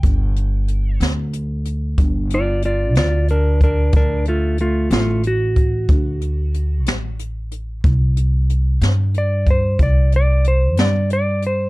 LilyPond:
<<
  \new Staff \with { instrumentName = "Electric slide guitar" } { \time 12/8 \key d \dorian \tempo 4. = 61 g''4. r2 <f' d''>8 <f' d''>8 <f' d''>8 <d' bes'>8 <d' bes'>8 | <d' bes'>8 <a f'>8 <a f'>8 <a f'>8 fis'2. r4 | r2 d''8 c''8 d''8 d''8 c''8 d''8 d''8 c''8 | }
  \new Staff \with { instrumentName = "Upright bass" } { \clef bass \time 12/8 \key d \dorian g,,4. d,4. g,,4. d,4. | d,4. a,,4. d,4. a,,4. | c,4. g,4. c,4. g,4. | }
  \new DrumStaff \with { instrumentName = "Drums" } \drummode { \time 12/8 <hh bd>8 hh8 hh8 <hh sn>8 hh8 hh8 <hh bd>8 hh8 hh8 <hh sn>8 hh8 <hh bd>8 | <hh bd>8 hh8 hh8 <hh sn>8 hh8 <hh bd>8 <hh bd>8 hh8 hh8 <hh sn>8 hh8 hh8 | <hh bd>8 hh8 hh8 <hh sn>8 hh8 <hh bd>8 <hh bd>8 hh8 hh8 <hh sn>8 hh8 hh8 | }
>>